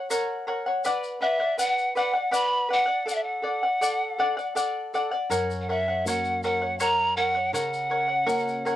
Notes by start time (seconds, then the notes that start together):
0.10 A#4 C#5 F#5, shaker
0.47 A#4 C#5 F#5
0.66 C#5 F#5
0.84 B4 D5 F#5, shaker
1.04 shaker
1.21 B4 D5 E5 F#5
1.40 D5 F#5
1.57 B4 D5 F#5, shaker
1.78 shaker
1.95 B4 D5 F#5, shaker
2.13 D5 F#5
2.31 B4 D5 F#5 B5, shaker
2.69 B4 D5 F#5
2.73 F#5
2.86 D5 F#5
3.06 A4 D5 F#5, shaker
3.10 F#5
3.15 E5
3.23 F#5
3.42 A4 D5 F#5
3.63 D5 F#5
3.81 A4 D5 F#5, shaker
4.18 A4 D5 F#5
4.37 D5 F#5, shaker
4.55 A4 D5 F#5, shaker
4.94 A4 D5 F#5, shaker
5.12 D5 F#5
5.30 F#2 A#4 C#5 F#5, shaker
5.51 shaker
5.62 F#5
5.69 A#4 C#5 E5 F#5
5.88 C#5 F#5
6.05 A#3 C#4 F#4 A#4 C#5 F#5, shaker
6.25 shaker
6.43 A#4 C#5 F#5, shaker
6.62 C#5 F#5
6.80 A#4 C#5 F#5 A#5, shaker
7.17 A#4 C#5 F#5
7.34 C#5 F#5
7.53 C#3 A#4 C#5 F#5, shaker
7.73 shaker
7.90 A#4 C#5 F#5
8.08 C#5 F#5
8.26 A#3 C#4 F#4 A#4 C#5 F#5, shaker
8.48 shaker
8.65 A#4 C#5 F#5, shaker